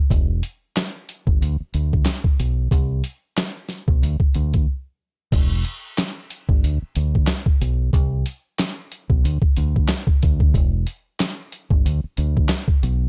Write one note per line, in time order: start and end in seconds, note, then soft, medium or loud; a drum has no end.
0.10 0.40 E1 loud
0.10 kick loud
0.10 closed hi-hat loud
0.43 closed hi-hat medium
0.76 snare loud
0.76 clap medium
0.76 closed hi-hat loud
1.09 closed hi-hat medium
1.27 1.40 G1 medium
1.27 kick medium
1.42 1.58 D2 loud
1.42 closed hi-hat loud
1.60 muted fingered electric bass stroke soft
1.74 2.04 D2 medium
1.74 closed hi-hat medium
1.93 kick loud
2.05 snare loud
2.05 clap loud
2.05 closed hi-hat medium
2.24 kick loud
2.40 2.69 B1 medium
2.40 closed hi-hat medium
2.71 3.01 C2 loud
2.71 kick loud
2.71 closed hi-hat loud
3.04 closed hi-hat medium
3.37 snare loud
3.37 clap medium
3.37 closed hi-hat loud
3.69 snare soft
3.69 closed hi-hat medium
3.88 4.01 B1 medium
3.88 kick loud
4.03 4.19 D2 loud
4.03 closed hi-hat loud
4.20 kick loud
4.34 4.65 D2 loud
4.34 closed hi-hat medium
4.54 kick loud
4.54 closed hi-hat soft
5.32 5.62 E1 loud
5.32 kick loud
5.32 closed hi-hat loud
5.32 crash loud
5.65 closed hi-hat medium
5.98 snare loud
5.98 clap medium
5.98 closed hi-hat loud
6.30 closed hi-hat medium
6.49 6.62 G1 medium
6.49 kick medium
6.64 6.80 D2 loud
6.64 closed hi-hat loud
6.82 muted fingered electric bass stroke soft
6.95 7.26 D2 loud
6.95 closed hi-hat medium
7.15 kick loud
7.27 snare loud
7.27 clap medium
7.27 closed hi-hat medium
7.46 kick loud
7.61 7.91 B1 medium
7.61 closed hi-hat medium
7.93 8.23 C2 loud
7.93 kick loud
7.93 closed hi-hat loud
8.26 closed hi-hat medium
8.59 snare loud
8.59 clap medium
8.59 closed hi-hat loud
8.92 closed hi-hat medium
9.10 9.23 B1 medium
9.10 kick medium
9.25 9.41 D2 loud
9.25 closed hi-hat loud
9.42 kick loud
9.57 9.86 D2 loud
9.57 closed hi-hat medium
9.76 kick loud
9.88 snare loud
9.88 clap loud
9.88 closed hi-hat medium
10.07 kick loud
10.23 10.52 D2 medium
10.23 kick medium
10.23 closed hi-hat medium
10.40 kick loud
10.54 10.84 E1 loud
10.54 kick loud
10.54 closed hi-hat loud
10.87 closed hi-hat medium
11.20 snare loud
11.20 clap loud
11.20 closed hi-hat loud
11.52 closed hi-hat medium
11.70 11.83 G1 medium
11.70 kick loud
11.85 12.02 D2 loud
11.85 closed hi-hat loud
12.04 muted fingered electric bass stroke medium
12.17 12.47 D2 loud
12.17 closed hi-hat medium
12.37 kick loud
12.49 snare loud
12.49 clap loud
12.49 closed hi-hat medium
12.68 kick medium
12.83 13.09 B1 loud
12.83 closed hi-hat medium